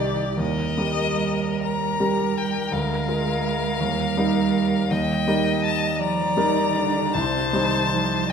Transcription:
Already playing: grand piano C2 G3 G4 D#5, cello D#3, violin G4 D5
0.37 grand piano D#2, cello G3, violin A#4 D#5
0.77 grand piano G3 G4 A#4
1.63 violin A#5
2.00 grand piano G3 G4 A#4
2.38 violin G5
2.72 grand piano D2, cello G#3, violin F5
3.08 grand piano G#3 F4 A#4
3.80 grand piano D#2, cello G3
4.17 grand piano G3 D#4 A#4
4.91 grand piano D#2, cello G3, violin D#5 G5
5.28 grand piano G3 D#4 A#4
5.64 violin A5
5.99 cello F3, violin D5 A#5
6.36 cello D#3, grand piano G3 D#4 A#4
6.75 cello D3
7.14 grand piano C2, cello C3, violin C5 A5
7.53 cello D#3, grand piano G3 D#4 C5
7.92 cello F3

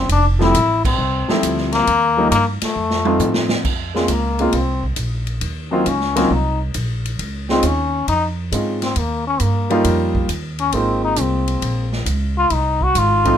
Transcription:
0.09 upright bass F1, trombone D4, kick, ride
0.39 grand piano F3 G3 A3 C4 E4, trombone E4, snare
0.54 upright bass A1, kick, hi-hat pedal, ride
0.85 trombone C4, kick, crash
0.98 upright bass C2
1.28 grand piano F3 G3 A3 C4 E4, muted upright bass stroke, snare
1.43 upright bass D2, kick, hi-hat pedal, ride
1.58 snare
1.72 trombone A#3, snare, ride
1.87 upright bass D#2, kick, ride
2.17 grand piano F3 G3 A#3 C#4 D#4
2.31 upright bass G2, trombone A#3, kick, hi-hat pedal, ride
2.61 trombone A3, muted upright bass stroke, snare, ride
2.76 upright bass F2
2.90 snare
3.05 grand piano F3 A3 C4 D#4 F4, high tom
3.19 upright bass A2, floor tom, hi-hat pedal
3.34 snare
3.49 snare
3.65 upright bass F2, kick, crash
3.94 grand piano G#3 A#3 C4 C#4 F4, trombone G#3, snare
4.08 upright bass C#2, trombone A#3, kick, hi-hat pedal, ride
4.39 grand piano G#3 A#3 C4 C#4 F4, ride
4.53 upright bass C2, trombone C4, kick, ride
4.83 kick
4.96 upright bass A#1, kick, hi-hat pedal, ride
5.27 ride
5.41 upright bass D#2, kick, ride
5.71 grand piano F#3 A#3 C#4 D#4 F4, trombone C4
5.86 upright bass C#2, trombone C#4, kick, hi-hat pedal, ride
6.01 snare
6.15 grand piano F#3 A#3 C4 D#4 F4, snare, ride
6.30 upright bass C2, trombone D#4, kick
6.74 upright bass A#1, kick, hi-hat pedal, ride
7.06 ride
7.19 upright bass C#2, kick, ride
7.49 grand piano G#3 C4 C#4 D#4 F4, trombone C4, snare
7.63 upright bass D#2, trombone C#4, kick, hi-hat pedal, ride
8.08 upright bass F2, trombone D#4, kick, ride
8.52 upright bass G#2, grand piano G#3 C4 C#4 D#4 F4, kick, hi-hat pedal, ride
8.82 trombone C4, snare, ride
8.96 upright bass D#2, trombone A#3, kick, ride
9.27 trombone C#4
9.40 upright bass G2, trombone A#3, kick, hi-hat pedal, ride
9.70 grand piano G3 A#3 C#4 D#4 F4, ride
9.84 upright bass F2, kick, ride
10.15 kick
10.29 upright bass D#2, kick, hi-hat pedal, ride
10.59 trombone C#4, ride
10.72 upright bass G#1, grand piano G#3 A#3 C4 D#4 F4, trombone C4, kick, ride
11.05 trombone D#4
11.16 upright bass C2, kick, hi-hat pedal, ride
11.20 trombone C4
11.48 ride
11.62 upright bass A#1, kick, ride
11.93 snare
12.06 upright bass C#2, kick, hi-hat pedal, ride
12.38 trombone F4
12.50 upright bass C2, trombone D#4, kick, ride
12.81 trombone F#4, kick
12.95 upright bass G#1, trombone F4, kick, hi-hat pedal, ride
13.25 grand piano F3 A3 C4 D#4 F4, kick, ride

